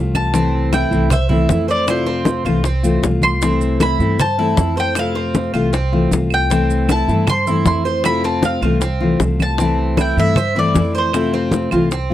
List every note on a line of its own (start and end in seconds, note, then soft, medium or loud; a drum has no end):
0.00 0.86 C2 loud
0.00 0.33 A3 medium
0.00 0.33 C4 medium
0.00 0.34 F4 medium
0.15 0.69 A5 loud
0.15 high conga medium
0.15 claves medium
0.15 maracas soft
0.34 0.91 C3 medium
0.34 0.93 E3 medium
0.34 0.92 A3 medium
0.34 0.71 C4 medium
0.34 0.92 C4 medium
0.34 0.91 E4 medium
0.34 high bongo medium
0.34 high conga soft
0.34 maracas medium
0.53 high conga soft
0.73 1.10 E4 medium
0.73 1.13 G5 medium
0.73 high bongo medium
0.73 high conga medium
0.73 claves medium
0.73 maracas medium
0.91 1.45 C2 medium
0.91 1.10 E3 medium
0.91 1.10 A3 medium
0.91 1.10 C4 medium
0.91 1.10 E4 medium
0.91 high conga soft
0.91 maracas soft
1.10 1.29 C5 medium
1.10 1.70 E5 medium
1.10 muted steel-string acoustic guitar stroke medium
1.10 high bongo medium
1.10 high conga soft
1.10 low conga medium
1.10 claves medium
1.10 maracas medium
1.29 1.48 E3 medium
1.29 1.49 A3 medium
1.29 1.49 C4 medium
1.29 1.67 E4 medium
1.29 1.48 E4 medium
1.29 high conga soft
1.29 low conga medium
1.49 2.40 F2 medium
1.49 1.87 E3 soft
1.49 1.87 A3 medium
1.49 1.88 C4 medium
1.49 1.88 E4 medium
1.49 high bongo medium
1.49 low bongo medium
1.49 high conga medium
1.49 maracas medium
1.68 1.87 C5 medium
1.68 1.89 D5 medium
1.68 high conga soft
1.68 maracas soft
1.87 2.44 C3 medium
1.87 2.46 A3 medium
1.87 2.45 C4 medium
1.87 2.06 E4 medium
1.87 2.44 F4 medium
1.87 3.00 C5 medium
1.87 high bongo medium
1.87 high conga soft
1.87 claves medium
1.87 maracas medium
2.06 2.44 C4 medium
2.06 high bongo soft
2.06 high conga soft
2.25 high bongo medium
2.25 high conga loud
2.25 maracas medium
2.45 2.99 C2 medium
2.45 2.63 E3 medium
2.45 2.64 A3 medium
2.45 2.64 C4 medium
2.45 2.64 F4 medium
2.45 high bongo soft
2.45 high conga soft
2.45 claves medium
2.45 maracas soft
2.64 3.02 C4 medium
2.64 muted steel-string acoustic guitar stroke medium
2.64 high bongo medium
2.64 high conga soft
2.64 maracas medium
2.83 3.03 E3 medium
2.83 3.02 A3 medium
2.83 3.02 C4 medium
2.83 3.02 F4 medium
2.83 high bongo soft
2.83 high conga soft
2.83 maracas medium
3.03 3.94 C2 medium
3.03 3.41 A3 soft
3.03 3.41 C4 medium
3.03 3.42 F4 medium
3.03 high bongo medium
3.03 low bongo medium
3.03 high conga medium
3.03 maracas medium
3.22 3.77 C6 loud
3.22 high conga medium
3.22 claves medium
3.22 maracas soft
3.41 3.98 C3 medium
3.41 4.01 E3 medium
3.41 4.01 A3 medium
3.41 3.79 C4 medium
3.41 4.00 C4 medium
3.41 3.99 E4 medium
3.41 high bongo medium
3.41 high conga soft
3.41 maracas medium
3.61 high conga soft
3.61 maracas medium
3.80 4.18 E4 medium
3.80 4.20 B5 loud
3.80 high bongo medium
3.80 high conga medium
3.80 claves medium
3.80 maracas medium
3.99 4.53 G2 loud
3.99 4.18 E3 medium
3.99 4.19 A3 medium
3.99 4.19 C4 medium
3.99 4.18 E4 medium
3.99 high conga soft
3.99 maracas soft
4.19 4.38 C5 medium
4.19 4.79 A5 loud
4.19 muted steel-string acoustic guitar stroke medium
4.19 high bongo medium
4.19 high conga soft
4.19 low conga medium
4.19 claves medium
4.19 maracas medium
4.38 4.56 E3 soft
4.38 4.58 A3 medium
4.38 4.57 C4 medium
4.38 4.57 E4 medium
4.38 4.76 E4 medium
4.38 high conga soft
4.57 5.48 F2 medium
4.57 4.96 C4 soft
4.57 4.96 E4 medium
4.57 high bongo medium
4.57 low bongo medium
4.57 high conga medium
4.57 maracas medium
4.77 4.95 C5 medium
4.77 4.96 G5 loud
4.77 high conga soft
4.77 maracas soft
4.95 5.53 C3 medium
4.95 5.55 A3 medium
4.95 5.54 C4 medium
4.95 5.14 E4 medium
4.95 5.52 F4 medium
4.95 6.09 F5 loud
4.95 high bongo medium
4.95 high conga soft
4.95 claves medium
4.95 maracas medium
5.15 5.53 C4 medium
5.15 high bongo soft
5.15 high conga soft
5.35 high bongo medium
5.35 high conga medium
5.35 maracas medium
5.53 6.07 C2 medium
5.53 5.72 E3 medium
5.53 5.72 A3 medium
5.53 5.73 C4 medium
5.53 5.72 F4 medium
5.53 high bongo soft
5.53 high conga soft
5.53 claves medium
5.53 maracas soft
5.73 6.10 C4 medium
5.73 muted steel-string acoustic guitar stroke medium
5.73 high bongo medium
5.73 high conga soft
5.73 maracas medium
5.92 6.12 E3 medium
5.92 6.11 A3 medium
5.92 6.11 C4 medium
5.92 6.11 F4 medium
5.92 high bongo soft
5.92 high conga soft
6.11 7.02 C2 medium
6.11 6.49 A3 soft
6.11 6.50 C4 medium
6.11 6.50 F4 medium
6.11 high bongo medium
6.11 low bongo medium
6.11 high conga medium
6.11 maracas medium
6.30 6.91 G5 loud
6.30 claves medium
6.30 maracas soft
6.50 7.07 C3 medium
6.50 7.10 E3 medium
6.50 7.09 A3 medium
6.50 6.88 C4 medium
6.50 7.09 C4 medium
6.50 7.08 E4 medium
6.50 high bongo medium
6.50 high conga soft
6.50 maracas medium
6.70 high conga soft
6.70 maracas medium
6.89 7.26 E4 medium
6.89 7.26 A5 loud
6.89 high bongo medium
6.89 high conga medium
6.89 claves medium
6.89 maracas medium
7.08 7.62 G2 loud
7.08 7.27 E3 medium
7.08 7.27 A3 medium
7.08 7.27 C4 medium
7.08 7.27 E4 medium
7.08 high conga soft
7.08 maracas soft
7.27 7.46 C5 medium
7.27 7.64 C6 loud
7.27 muted steel-string acoustic guitar stroke medium
7.27 high bongo medium
7.27 high conga soft
7.27 low conga medium
7.27 claves medium
7.27 maracas medium
7.47 7.65 E3 medium
7.47 7.66 A3 medium
7.47 7.66 C4 medium
7.47 7.65 E4 medium
7.47 7.84 E4 medium
7.47 high conga soft
7.47 maracas medium
7.65 8.56 F2 medium
7.65 8.04 E3 soft
7.65 8.04 A3 soft
7.65 8.05 C4 soft
7.65 8.05 E4 medium
7.65 8.05 C6 loud
7.65 high bongo medium
7.65 low bongo medium
7.65 high conga medium
7.65 maracas medium
7.85 8.04 C5 medium
7.85 high conga soft
7.85 maracas soft
8.04 8.62 C3 medium
8.04 8.64 A3 medium
8.04 8.63 C4 medium
8.04 8.23 E4 medium
8.04 8.62 F4 medium
8.04 8.23 B5 loud
8.04 high bongo medium
8.04 high conga soft
8.04 claves medium
8.04 maracas medium
8.24 8.62 C4 medium
8.24 8.44 A5 medium
8.24 high bongo soft
8.24 high conga soft
8.43 9.17 F5 medium
8.43 high bongo medium
8.43 high conga medium
8.43 maracas medium
8.61 9.16 C2 loud
8.61 8.82 E3 medium
8.61 8.82 A3 medium
8.61 8.81 C4 medium
8.61 8.80 F4 medium
8.61 8.81 F4 medium
8.61 high bongo soft
8.61 high conga soft
8.61 claves medium
8.61 maracas soft
8.81 9.19 C4 medium
8.81 muted steel-string acoustic guitar stroke medium
8.81 high bongo medium
8.81 high conga soft
8.81 maracas medium
9.01 9.21 E3 medium
9.01 9.19 A3 medium
9.01 9.20 C4 medium
9.01 9.20 F4 medium
9.01 high bongo soft
9.01 high conga soft
9.20 10.11 C2 medium
9.20 9.58 A3 medium
9.20 9.59 C4 medium
9.20 9.59 F4 medium
9.20 high bongo medium
9.20 low bongo medium
9.20 high conga medium
9.20 maracas medium
9.40 9.77 A5 loud
9.40 high conga medium
9.40 claves medium
9.40 maracas soft
9.58 10.16 C3 medium
9.58 10.19 E3 medium
9.58 10.18 A3 medium
9.58 9.96 C4 medium
9.58 10.18 C4 medium
9.58 10.17 E4 medium
9.58 high bongo medium
9.58 high conga soft
9.58 maracas medium
9.78 high conga soft
9.97 10.35 E4 medium
9.97 10.19 G5 medium
9.97 high bongo medium
9.97 high conga loud
9.97 claves medium
9.97 maracas medium
10.17 10.71 G2 loud
10.17 10.36 E3 medium
10.17 10.36 A3 medium
10.17 10.36 C4 medium
10.17 10.36 E4 medium
10.17 10.58 E5 medium
10.17 high conga soft
10.17 maracas soft
10.36 10.55 C5 medium
10.36 muted steel-string acoustic guitar stroke medium
10.36 high bongo medium
10.36 high conga soft
10.36 low conga medium
10.36 claves medium
10.36 maracas medium
10.55 10.74 E3 medium
10.55 10.74 A3 medium
10.55 10.75 C4 medium
10.55 10.74 E4 medium
10.55 10.93 E4 medium
10.55 10.93 D5 medium
10.55 high conga soft
10.74 11.66 F2 medium
10.74 11.13 E3 medium
10.74 11.13 A3 medium
10.74 11.14 C4 medium
10.74 11.14 E4 medium
10.74 high bongo medium
10.74 low bongo medium
10.74 high conga medium
10.74 maracas medium
10.93 11.13 C5 medium
10.93 high conga soft
10.93 maracas soft
10.98 12.14 C5 medium
11.13 11.71 C3 medium
11.13 11.71 A3 medium
11.13 11.71 C4 medium
11.13 11.33 E4 medium
11.13 11.70 F4 medium
11.13 high bongo medium
11.13 high conga soft
11.13 claves medium
11.13 maracas medium
11.33 11.71 C4 medium
11.33 high bongo soft
11.33 high conga soft
11.52 high bongo medium
11.52 high conga medium
11.52 maracas medium
11.71 12.14 C2 medium
11.71 11.90 E3 medium
11.71 11.90 A3 medium
11.71 11.90 C4 medium
11.71 11.90 F4 medium
11.71 11.91 F4 medium
11.71 high bongo soft
11.71 high conga soft
11.71 claves medium
11.71 maracas soft
11.90 12.14 C4 medium
11.90 muted steel-string acoustic guitar stroke medium
11.90 high bongo medium
11.90 high conga soft
11.90 maracas medium
12.10 12.14 C4 medium
12.10 12.14 F4 medium
12.10 high conga soft